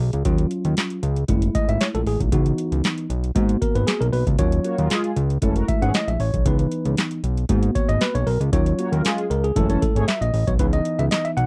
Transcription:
Already playing: tine electric piano G#4
0.00 analog synth bass B1
0.13 analog synth bass C#2, closed hi-hat
0.25 analog synth bass D#2, tine electric piano F#3 C#4 F4, kick, closed hi-hat
0.38 closed hi-hat
0.51 closed hi-hat
0.65 analog synth bass D#2, closed hi-hat
0.77 snare, clap, closed hi-hat
0.90 closed hi-hat
1.03 analog synth bass C#2, closed hi-hat
1.16 closed hi-hat
1.28 analog synth bass F#1, tine electric piano G#3 A3 E4, kick, closed hi-hat
1.42 closed hi-hat
1.55 tine electric piano D#5, kick, closed hi-hat
1.68 analog synth bass G#1, tine electric piano E5, closed hi-hat
1.81 tine electric piano C#5, snare, clap, closed hi-hat
1.95 analog synth bass A#1, tine electric piano A4, closed hi-hat
2.06 analog synth bass A1, tine electric piano G#4, open hi-hat
2.20 analog synth bass B1, kick, closed hi-hat
2.32 analog synth bass C#2, tine electric piano E3 B3 D#4 F#4, kick, closed hi-hat
2.46 closed hi-hat
2.58 closed hi-hat
2.72 analog synth bass C#2, closed hi-hat
2.84 snare, clap, closed hi-hat
2.98 closed hi-hat
3.10 analog synth bass B1, closed hi-hat
3.24 closed hi-hat
3.35 analog synth bass G#2, tine electric piano A#3 B3 F#4, kick, closed hi-hat
3.49 closed hi-hat
3.62 tine electric piano A#4, kick, closed hi-hat
3.75 analog synth bass G#1, tine electric piano B4, closed hi-hat
3.87 tine electric piano G#4, snare, clap, closed hi-hat
4.01 analog synth bass B1, tine electric piano A#4, closed hi-hat
4.13 analog synth bass B1, tine electric piano B4, open hi-hat
4.27 analog synth bass C#2, kick, closed hi-hat
4.38 analog synth bass D#2, tine electric piano F#3 C#4 F4 C#5, kick, closed hi-hat
4.52 closed hi-hat
4.64 analog polysynth A#3 F#4 C#5, closed hi-hat
4.78 analog synth bass D#2, analog polysynth F#3 F4 A#4, closed hi-hat
4.90 analog polysynth G#3 F4 G#4, snare, clap, closed hi-hat
5.04 closed hi-hat
5.16 analog synth bass C#2, closed hi-hat
5.30 closed hi-hat
5.42 analog synth bass F#1, analog polysynth E3 C#4 A4, tine electric piano G#3 A3 E4, kick, closed hi-hat
5.56 analog polysynth F#4 A#4, closed hi-hat
5.68 tine electric piano E5, kick, closed hi-hat
5.81 analog synth bass G#1, analog polysynth E3 C#4 G#4, tine electric piano F#5, closed hi-hat
5.94 tine electric piano D#5, snare, clap, closed hi-hat
6.08 analog synth bass A#1, tine electric piano E5, closed hi-hat
6.20 analog synth bass A1, tine electric piano C#5, open hi-hat
6.34 analog synth bass B1, kick, closed hi-hat
6.45 analog synth bass C#2, tine electric piano E3 B3 D#4 B4, kick, closed hi-hat
6.59 closed hi-hat
6.71 closed hi-hat
6.85 analog synth bass C#2, closed hi-hat
6.97 snare, clap, closed hi-hat
7.11 closed hi-hat
7.24 analog synth bass B1, closed hi-hat
7.37 closed hi-hat
7.49 analog synth bass G#2, tine electric piano A#3 B3 F#4, kick, closed hi-hat
7.63 closed hi-hat
7.75 tine electric piano C#5, kick, closed hi-hat
7.89 analog synth bass G#1, tine electric piano D#5, closed hi-hat
8.01 tine electric piano B4, snare, clap, closed hi-hat
8.15 analog synth bass B1, tine electric piano C#5, closed hi-hat
8.27 analog synth bass B1, tine electric piano A#4, open hi-hat
8.40 analog synth bass C#2, closed hi-hat
8.52 analog synth bass D#2, tine electric piano F#3 C#4 F4 C#5, kick, closed hi-hat
8.66 closed hi-hat
8.78 analog polysynth A#3 F#4 C#5, closed hi-hat
8.92 analog synth bass D#2, analog polysynth F#3 F4 A#4, closed hi-hat
9.04 analog polysynth G#3 F4 G#4, snare, clap, closed hi-hat
9.18 closed hi-hat
9.30 analog synth bass C#2, tine electric piano A#4, closed hi-hat
9.44 tine electric piano G#4, closed hi-hat
9.56 analog synth bass F#1, analog polysynth E3 C#4 A4, tine electric piano G#3 A3 E4 A4, kick, closed hi-hat
9.69 analog polysynth E3 C#4 A4, tine electric piano C#5, closed hi-hat
9.82 tine electric piano A4, kick, closed hi-hat
9.95 analog synth bass G#1, analog polysynth A3 G#4 C#5, closed hi-hat
10.08 tine electric piano E5, snare, clap, closed hi-hat
10.21 analog synth bass A#1, tine electric piano D#5, closed hi-hat
10.34 analog synth bass A1, open hi-hat
10.47 analog synth bass B1, tine electric piano C#5, kick, closed hi-hat
10.59 analog synth bass C#2, tine electric piano E3 B3 D#4 B4, kick, closed hi-hat
10.73 tine electric piano D#5, closed hi-hat
10.85 closed hi-hat
10.99 analog synth bass C#2, tine electric piano E5, closed hi-hat
11.11 tine electric piano D#5, snare, clap, closed hi-hat
11.25 tine electric piano E5, closed hi-hat
11.37 analog synth bass B1, tine electric piano F#5, closed hi-hat

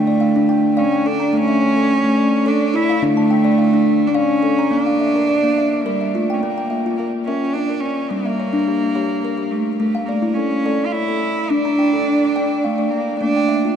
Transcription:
Already playing: kalimba D3 G5, cello A3
0.07 kalimba D5
0.20 kalimba F5
0.36 kalimba D4
0.49 kalimba G5
0.77 cello C#4, kalimba D5 F5
0.92 kalimba G5
1.06 cello D4, kalimba A4
1.20 kalimba A#5
1.33 kalimba A3, cello C#4
1.48 kalimba E5
1.61 kalimba C#5
1.76 kalimba A4
1.90 kalimba C#5
2.04 kalimba A3
2.17 kalimba D5
2.46 cello D4, kalimba A4 C#5
2.61 kalimba D5
2.74 kalimba E4, cello E4
2.89 kalimba F5
3.02 kalimba D3 D4, cello A3
3.17 kalimba A5
3.31 kalimba G5
3.45 kalimba D5
3.58 kalimba F5
3.73 kalimba D4
4.07 cello D4
4.14 cello C#4, kalimba D5 F5
4.43 kalimba A4
4.59 kalimba A#5
4.71 kalimba A#3, cello D4
4.86 kalimba F5
5.00 kalimba E5
5.16 kalimba A#4
5.29 kalimba D5
5.44 kalimba A#3
5.58 kalimba E5
5.85 cello G3, kalimba A#4 D5
6.01 kalimba E5
6.14 cello A3, kalimba F4
6.30 cello C#4, kalimba G5
6.41 cello A#3, kalimba A#3
6.58 kalimba G5
6.70 kalimba E5
6.86 kalimba F4
6.97 cello A#3, kalimba A#4
7.25 cello C#4, kalimba A#4 E5
7.53 cello D4, kalimba D5
7.69 kalimba A#4
7.81 cello C#4
8.11 kalimba G3, cello A#3
8.26 kalimba E5
8.40 kalimba C#5
8.53 kalimba D4
8.68 kalimba G4
8.95 kalimba G4 C#5
9.25 kalimba A#4
9.38 kalimba G4
9.51 cello A3
9.77 cello A3, kalimba A3
9.95 kalimba F5
10.06 cello A#3, kalimba D5
10.22 kalimba E4
10.34 cello C#4, kalimba A4
10.66 kalimba A4 D5
10.86 cello F4
10.92 cello E4, kalimba C#5
11.08 kalimba A4
11.50 kalimba D4, cello D4
11.65 kalimba A#5
11.79 kalimba G5
11.93 kalimba A4
12.07 kalimba D5
12.36 kalimba D5 G5
12.64 cello A3, kalimba F5
12.78 kalimba D5
12.91 cello A#3
13.21 kalimba A3 A#3, cello D4
13.36 kalimba G5
13.49 kalimba E5
13.65 kalimba F4

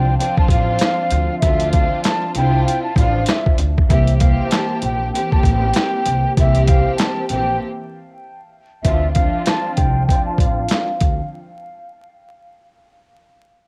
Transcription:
Already playing: upright bass C2, string section F3 C4 D4 F4, flute G5
0.17 string section F3 C4 D4 F4, flute G5, closed hi-hat
0.37 flute A5, kick
0.48 upright bass A1, flute F5, kick, closed hi-hat
0.79 snare, clap, closed hi-hat
1.11 upright bass D2, closed hi-hat
1.40 upright bass D2, string section F3 C4, flute E5, kick, closed hi-hat
1.44 string section D4 F4
1.60 closed hi-hat
1.73 flute F5, kick, closed hi-hat
2.04 flute A5, snare, clap, closed hi-hat
2.34 upright bass C2, string section C4 D4 E4 F4, flute G5, closed hi-hat
2.65 flute G5, closed hi-hat
2.83 flute A5
2.95 upright bass A1, string section F3 C4 D4 F4, flute F5, kick, closed hi-hat
3.26 flute E5, snare, clap, closed hi-hat
3.46 kick
3.58 upright bass D2, closed hi-hat
3.78 kick
3.88 upright bass C2, string section E3 A#3 C4 G4, flute E5, kick, closed hi-hat
4.07 closed hi-hat
4.19 string section E3 A#3 C4 G4, flute F5, kick, closed hi-hat
4.50 flute A5, snare, clap, closed hi-hat
4.82 upright bass A#1, flute G5, closed hi-hat
5.12 string section E3 A#3 C4 G4, flute G5, closed hi-hat
5.32 flute A5, kick
5.43 upright bass A1, flute G5, kick, closed hi-hat
5.73 snare, clap, closed hi-hat
6.05 upright bass C2, closed hi-hat
6.36 upright bass C2, string section E3 A#3 C4 G4, flute E5, kick, closed hi-hat
6.55 closed hi-hat
6.67 flute F5, kick, closed hi-hat
6.97 flute A5, snare, clap, closed hi-hat
7.29 upright bass A#1, string section E3 A#3 C4 G4, flute G5, closed hi-hat
8.83 upright bass D2, string section E3 C4 D4 F4, flute E5, kick, closed hi-hat
9.13 string section F3 C4 D4 F4, flute F5, kick, closed hi-hat
9.46 flute A5, snare, clap, closed hi-hat
9.75 upright bass C2, flute G5, kick, closed hi-hat
10.06 string section F3 C4, flute G5, kick
10.10 string section D4 F4, closed hi-hat
10.26 flute A5
10.38 upright bass A1, flute F5, kick, closed hi-hat
10.69 snare, clap, closed hi-hat
11.00 upright bass D2, kick, closed hi-hat

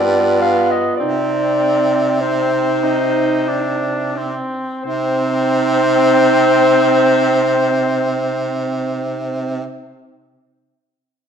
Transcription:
Already playing: baritone saxophone G2, tenor saxophone B3, clarinet F4 D5
0.42 clarinet F5
0.71 clarinet D#5
0.97 baritone saxophone C3, tenor saxophone C4, clarinet D#4 D5
2.21 tenor saxophone C4, clarinet D#4 C5
2.84 tenor saxophone D#4
3.48 tenor saxophone D4
4.17 tenor saxophone C4
4.83 baritone saxophone C3, tenor saxophone C4, clarinet D#4 C5

